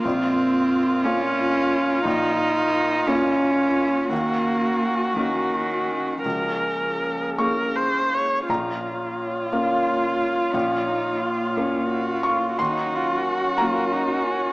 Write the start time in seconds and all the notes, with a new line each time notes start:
Already playing: F4 A#4
0.04 A#1 A#3 C4 F4
1.04 A#3 C#4 F4
2.05 A#1 D#4
3.07 A#3 C#4 F4
4.10 D#2 A#3 C#4 F#4
5.15 D#3 A#3 C#4 F#4
6.22 C#2 F3 A#3 G#4 A#4
7.38 A#3 C#4 G#4 A#4 C#6
7.75 C5
8.14 C#5
8.49 A#1 A#3 F4 C#5 F5 A#5
9.52 A#3 C#4 F4 A#4 F5
10.54 A#1 C#4 F5
10.87 D#4
11.22 F4
11.57 A#3 C#4 A#4
11.90 F#4
12.23 F4 C#6
12.59 D#2 F#3 C#4 D#4 F#4 A#4 C6
12.95 F4
13.27 F#4
13.58 F#3 A#3 C#4 F4 A#5
13.93 D#4
14.25 C#4